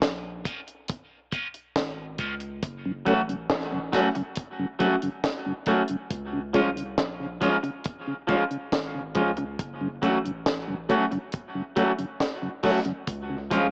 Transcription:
0.02 sub bass A#1, kick, snare, closed hi-hat
0.45 clean electric guitar F3 G#3 C#4 F4, kick, closed hi-hat
0.67 muted clean electric guitar stroke, closed hi-hat
0.88 kick, closed hi-hat
1.32 clean electric guitar F3 G#3 C#4 F4, tonewheel organ F3 G#3 C#4, kick, closed hi-hat
1.54 closed hi-hat
1.76 sub bass G#1, kick, snare, closed hi-hat
2.18 sub bass C#2, clean electric guitar F3 G#3 C#4 F4, tonewheel organ F3 G#3 C#4, kick, closed hi-hat
2.40 muted clean electric guitar stroke, closed hi-hat
2.63 sub bass F#1, kick, closed hi-hat
2.85 tonewheel organ F#2 C#3
3.05 sub bass A1, clean electric guitar F#3 A3 C#4 F#4, tonewheel organ F#3 A3 C#4, kick, closed hi-hat
3.29 tonewheel organ F#2 C#3, closed hi-hat
3.50 sub bass A1, kick, snare, closed hi-hat
3.72 tonewheel organ F#2 C#3
3.92 clean electric guitar F#3 A3 C#4 F#4, tonewheel organ F#3 A3 C#4, kick, snare, closed hi-hat
4.15 tonewheel organ F#2 C#3, muted clean electric guitar stroke, closed hi-hat
4.36 kick, closed hi-hat
4.59 tonewheel organ F#2 C#3
4.79 clean electric guitar F#3 A3 C#4 F#4, tonewheel organ F#3 A3 C#4, kick, closed hi-hat
5.02 tonewheel organ F#2 C#3, closed hi-hat
5.24 kick, snare, closed hi-hat
5.46 tonewheel organ F#2 C#3
5.66 clean electric guitar F#3 A3 C#4 F#4, tonewheel organ F#3 A3 C#4, kick, closed hi-hat
5.88 tonewheel organ F#2 C#3, closed hi-hat
6.11 sub bass C#2, kick, closed hi-hat
6.33 tonewheel organ C#3
6.53 sub bass C2, clean electric guitar F3 G#3 C#4 F4, tonewheel organ F3 G#3 C#4, kick, closed hi-hat
6.76 tonewheel organ C#3, closed hi-hat
6.98 sub bass A#1, kick, snare, closed hi-hat
7.20 tonewheel organ C#3
7.41 clean electric guitar F3 G#3 C#4 F4, tonewheel organ F3 G#3 C#4, kick, closed hi-hat
7.63 tonewheel organ C#3, muted clean electric guitar stroke, closed hi-hat
7.84 kick, closed hi-hat
8.07 tonewheel organ C#3
8.27 clean electric guitar F3 G#3 C#4 F4, tonewheel organ F3 G#3 C#4, kick, closed hi-hat
8.51 tonewheel organ C#3, closed hi-hat
8.72 sub bass G#1, kick, snare, closed hi-hat
8.94 tonewheel organ C#3
9.15 sub bass C#2, clean electric guitar F3 G#3 C#4 F4, tonewheel organ F3 G#3 C#4, kick, closed hi-hat
9.37 tonewheel organ C#3, muted clean electric guitar stroke, closed hi-hat
9.59 sub bass F#1, kick, closed hi-hat
9.81 tonewheel organ F#2 C#3
10.02 sub bass A1, clean electric guitar F#3 A3 C#4 F#4, tonewheel organ F#3 A3 C#4, kick, closed hi-hat
10.25 tonewheel organ F#2 C#3, closed hi-hat
10.46 sub bass A1, kick, snare, closed hi-hat
10.68 tonewheel organ F#2 C#3
10.89 tonewheel organ F#3 A3 C#4, clean electric guitar F#3 A3 C#4 F#4, kick, closed hi-hat
11.11 tonewheel organ F#2 C#3, muted clean electric guitar stroke, closed hi-hat
11.32 kick, closed hi-hat
11.55 tonewheel organ F#2 C#3
11.76 clean electric guitar F#3 A3 C#4 F#4, tonewheel organ F#3 A3 C#4, kick, closed hi-hat
11.98 tonewheel organ F#2 C#3, closed hi-hat
12.20 kick, snare, closed hi-hat
12.42 tonewheel organ F#2 C#3
12.63 clean electric guitar F#3 A3 C#4 F#4, tonewheel organ F#3 A3 C#4, kick, open hi-hat
12.85 tonewheel organ F#2 C#3, closed hi-hat
13.07 sub bass C#2, kick, closed hi-hat
13.29 tonewheel organ C#3
13.50 sub bass C2, clean electric guitar F3 G#3 C#4 F4, tonewheel organ F3 G#3 C#4, kick, closed hi-hat

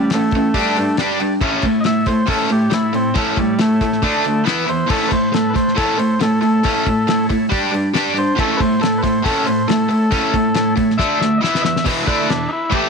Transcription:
Already playing: transistor combo organ G3, overdriven electric guitar C#4
0.09 transistor combo organ A3 E4 A4 C#5, snare, open hi-hat
0.14 overdriven electric guitar A3 C#4
0.31 overdriven electric guitar A3 C#4, kick, open hi-hat
0.53 overdriven electric guitar G3 D4, transistor combo organ D4 G4 D5, kick, open hi-hat
0.57 overdriven electric guitar G4
0.76 overdriven electric guitar G3 D4, open hi-hat
0.94 transistor combo organ D4 G4 D5, open hi-hat
0.98 overdriven electric guitar G3 D4 G4, snare
1.20 overdriven electric guitar G3 D4, open hi-hat
1.40 overdriven electric guitar A2 A3 C#4, transistor combo organ E4 A4 C#5, kick, crash
1.62 overdriven electric guitar A2 A3, kick, open hi-hat
1.81 transistor combo organ E4 D#5, open hi-hat
1.85 overdriven electric guitar A2 A3, transistor combo organ A4 C#5 E5, snare
2.06 overdriven electric guitar A2 A3, transistor combo organ C5, kick, open hi-hat
2.27 overdriven electric guitar A2 A3 C#4, transistor combo organ E4 A4, kick, open hi-hat
2.32 transistor combo organ C#5
2.49 overdriven electric guitar A2 A3, transistor combo organ G4, open hi-hat
2.70 overdriven electric guitar A2 A3, transistor combo organ E4 A4 C#5, snare, open hi-hat
2.93 overdriven electric guitar A2 A3, transistor combo organ C4, open hi-hat
3.14 overdriven electric guitar A2 A3 C#4, transistor combo organ A3 E4 A4, kick, open hi-hat
3.20 transistor combo organ C#5
3.37 overdriven electric guitar A2 A3, transistor combo organ G3, kick, open hi-hat
3.59 overdriven electric guitar A2 A3, transistor combo organ A3 E4 A4, snare, open hi-hat
3.63 transistor combo organ C#5
3.81 overdriven electric guitar A2 A3, kick, snare, open hi-hat
3.92 snare
4.02 overdriven electric guitar D3 A3 D4, transistor combo organ D4 A4 D5, kick, open hi-hat
4.24 overdriven electric guitar D3 A3, open hi-hat
4.45 overdriven electric guitar E3 B3 E4, transistor combo organ E4 B4 E5, snare, open hi-hat
4.66 overdriven electric guitar E3 B3, transistor combo organ C5, open hi-hat
4.87 overdriven electric guitar A2 A3 C#4, transistor combo organ A4, kick, crash
4.91 transistor combo organ E4 A4 C#5
5.08 overdriven electric guitar A2 A3, transistor combo organ B4, kick, open hi-hat
5.12 transistor combo organ C5
5.33 overdriven electric guitar A2 A3, transistor combo organ E4 A4, snare, open hi-hat
5.37 transistor combo organ B4
5.50 transistor combo organ B4
5.54 overdriven electric guitar A2 A3, transistor combo organ C5, kick, snare, open hi-hat
5.68 snare
5.75 overdriven electric guitar A2 A3 C#4, transistor combo organ E4 A4 C#5, kick, open hi-hat
5.97 overdriven electric guitar A2 A3, transistor combo organ C5, open hi-hat
6.20 overdriven electric guitar A2 A3, transistor combo organ E4 A4, snare, open hi-hat
6.25 transistor combo organ A4 C#5
6.41 overdriven electric guitar A2 A3, transistor combo organ A4, open hi-hat
6.63 overdriven electric guitar A2 A3 C#4, transistor combo organ E4, kick, open hi-hat
6.68 transistor combo organ A4 E5
6.85 overdriven electric guitar A2 A3, kick, open hi-hat
7.08 overdriven electric guitar A2 A3, transistor combo organ E4 A4 C#5, snare, open hi-hat
7.29 overdriven electric guitar A2 A3, kick, open hi-hat
7.50 overdriven electric guitar G3 D4 G4, transistor combo organ D4 G4 D5, kick, open hi-hat
7.72 overdriven electric guitar G3 D4, open hi-hat
7.94 overdriven electric guitar G3 D4 G4, transistor combo organ D4 G4, snare, open hi-hat
7.98 transistor combo organ D5
8.14 overdriven electric guitar G3 D4, open hi-hat
8.18 transistor combo organ C5
8.35 overdriven electric guitar A2 A3 C#4, transistor combo organ E4 A4, kick, crash
8.40 transistor combo organ A4 C#5
8.57 overdriven electric guitar A2 A3, transistor combo organ B4 C5, kick, open hi-hat
8.80 overdriven electric guitar A2 A3, transistor combo organ E4 A4 C#5, snare, open hi-hat
8.98 transistor combo organ B4
9.02 overdriven electric guitar A2 A3, transistor combo organ C5, kick, snare, open hi-hat
9.23 overdriven electric guitar A2 A3 C#4, transistor combo organ E4 A4 B4, kick, open hi-hat
9.44 overdriven electric guitar A2 A3, transistor combo organ C5, open hi-hat
9.68 overdriven electric guitar A2 A3, transistor combo organ E4 A4 C#5, snare, open hi-hat
9.89 overdriven electric guitar A2 A3, transistor combo organ A4, open hi-hat
10.11 overdriven electric guitar A2 A3 C#4, transistor combo organ E4 A4 C#5, kick, open hi-hat
10.33 overdriven electric guitar A2 A3, kick, open hi-hat
10.54 overdriven electric guitar A2 A3, transistor combo organ E4 A4 C#5, snare, open hi-hat
10.76 overdriven electric guitar A2 A3, kick, open hi-hat
10.90 snare
10.97 overdriven electric guitar D3 A3 D4, transistor combo organ D4 A4 D5 E5, kick, snare
11.20 overdriven electric guitar D3 A3, transistor combo organ E5, snare
11.38 overdriven electric guitar E3, transistor combo organ E4 B4 D#5
11.42 overdriven electric guitar B3 E4, transistor combo organ E5, snare
11.55 snare
11.61 overdriven electric guitar E3 B3, transistor combo organ D#5, snare
11.65 transistor combo organ E5
11.76 snare
11.84 overdriven electric guitar E2 B2 E3, transistor combo organ E4 B4 E5, kick, crash
12.06 overdriven electric guitar D3 A3 D4, transistor combo organ E4, kick
12.27 overdriven electric guitar E2 B2, transistor combo organ D4 E4 B4 E5, snare, crash
12.48 transistor combo organ D#4
12.53 transistor combo organ E4
12.70 overdriven electric guitar A2 E3 A3, transistor combo organ E4 B4 E5, kick, crash
12.74 transistor combo organ G4

